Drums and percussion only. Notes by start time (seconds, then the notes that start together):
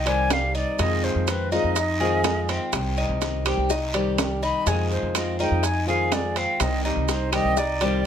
0.06 high timbale, maracas
0.30 high bongo, low bongo, high timbale, low timbale, short guiro, claves, maracas
0.55 short guiro, maracas
0.79 high bongo, high timbale, long guiro, maracas
1.03 high bongo, maracas
1.27 high bongo, high timbale, low timbale, short guiro, claves, maracas
1.52 short guiro, maracas
1.76 high bongo, high timbale, long guiro, maracas
2.00 high bongo, maracas
2.24 high bongo, low bongo, high timbale, low timbale, short guiro, claves, maracas
2.49 high bongo, high timbale, short guiro, maracas
2.73 high bongo, high timbale, long guiro, claves, maracas
2.97 maracas
3.21 high bongo, high timbale, low timbale, short guiro, maracas
3.46 high timbale, short guiro, claves, maracas
3.70 high bongo, long guiro, maracas
3.94 high timbale, maracas
4.18 high bongo, low bongo, high timbale, low timbale, short guiro, claves, maracas
4.43 short guiro, maracas
4.67 high bongo, high timbale, long guiro, maracas
4.91 high bongo, maracas
5.15 high bongo, high timbale, low timbale, short guiro, claves, maracas
5.39 short guiro, maracas
5.63 high bongo, high timbale, long guiro, maracas
5.87 high bongo, maracas
6.12 high bongo, low bongo, high timbale, low timbale, short guiro, claves, maracas
6.36 high bongo, high timbale, short guiro, maracas
6.60 high bongo, high timbale, long guiro, claves, maracas
6.85 maracas
7.08 high bongo, high timbale, low timbale, short guiro, maracas
7.33 high timbale, short guiro, claves, maracas
7.57 high bongo, long guiro, maracas
7.81 high timbale, maracas